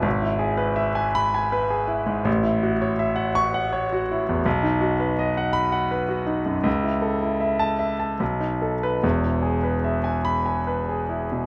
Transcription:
\new Staff \with { instrumentName = "Grand piano" } { \time 3/4 \key e \major \tempo 4 = 81 << { r4. b''8 r4 | r4. cis'''8 r4 | r4. b''8 r4 | r4 r16 a''8 r4 b'16 |
r4. b''8 r4 | } \\ { gis,,16 e'16 gis'16 b'16 e''16 gis''8 gis''16 b'16 gis'16 e'16 gis,16 | a,,16 e'16 fis'16 cis''16 e''16 fis''8 fis''16 cis''16 fis'16 e'16 e,16 | b,,16 dis'16 fis'16 b'16 dis''16 fis''8 fis''16 b'16 fis'16 dis'16 fis,16 | cis,16 e'16 a'16 e'16 e''8 e''16 a''16 b,,16 dis'16 a'8 |
<e,, e,>16 e'16 gis'16 b'16 e''16 gis''8 gis''16 b'16 gis'16 e'16 b,16 | } >> }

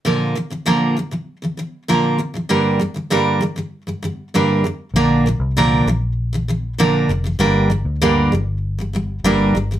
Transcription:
<<
  \new Staff \with { instrumentName = "Steel-string acoustic guitar" } { \clef bass \time 4/4 \key bes \lydian \tempo 4 = 98 <bes, d f bes f' bes'>8 <bes, d f>16 <bes, d f>16 <bes, d f bes f' bes'>8 <bes, d f>16 <bes, d f>8 <bes, d f>16 <bes, d f>8 <bes, d f bes f' bes'>8 <bes, d f>16 <bes, d f>16 | <g, d g bes d' bes'>8 <g, d g>16 <g, d g>16 <g, d g bes d' bes'>8 <g, d g>16 <g, d g>8 <g, d g>16 <g, d g>8 <g, d g bes d' bes'>8 <g, d g>8 | <bes, d f bes d' bes'>8 <bes, d f>8 <bes, d f bes d' bes'>8 <bes, d f>8 r16 <bes, d f>16 <bes, d f>8 <bes, d f bes d' bes'>8 <bes, d f>16 <bes, d f>16 | <g, d g bes d' bes'>8 <g, d g>8 <g, d g bes d' bes'>8 <g, d g>8 r16 <g, d g>16 <g, d g>8 <g, d g bes d' bes'>8 <g, d g>16 <g, d g>16 | }
  \new Staff \with { instrumentName = "Fingered electric bass" } { \clef bass \time 4/4 \key bes \lydian r1 | r1 | bes,,8. c,8. bes,,2 f,,8 | g,,8. d,8. g,,4. g,,8 g,,8 | }
>>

